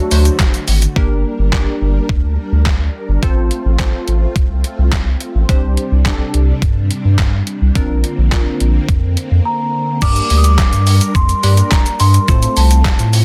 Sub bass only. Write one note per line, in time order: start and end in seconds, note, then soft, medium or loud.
0.11 0.30 D2 loud
0.68 0.86 G#1 loud
0.96 1.24 G1 loud
1.39 1.67 G1 medium
1.81 2.00 G1 medium
2.09 2.37 D2 medium
2.52 2.89 D2 medium
3.08 3.18 G1 medium
3.23 3.50 A1 loud
3.65 3.93 A1 medium
4.08 4.26 A1 medium
4.36 4.64 C2 medium
4.78 5.15 C2 medium
5.35 5.44 A1 medium
5.49 5.77 C2 loud
5.91 6.19 C2 medium
6.34 6.52 C2 medium
6.62 6.90 G2 medium
7.05 7.42 G2 medium
7.61 7.71 C2 medium
7.75 8.03 A#1 loud
8.18 8.46 A#1 medium
8.60 8.79 A#1 medium
8.89 9.16 F2 loud
9.31 9.40 F2 medium
10.02 10.20 G2 loud
10.30 10.58 D2 medium
10.73 11.01 G2 medium
11.15 11.34 F2 loud
11.43 11.62 G2 loud
12.00 12.19 G2 loud
12.28 12.47 A2 loud
12.57 12.85 C2 medium
12.99 13.25 A2 medium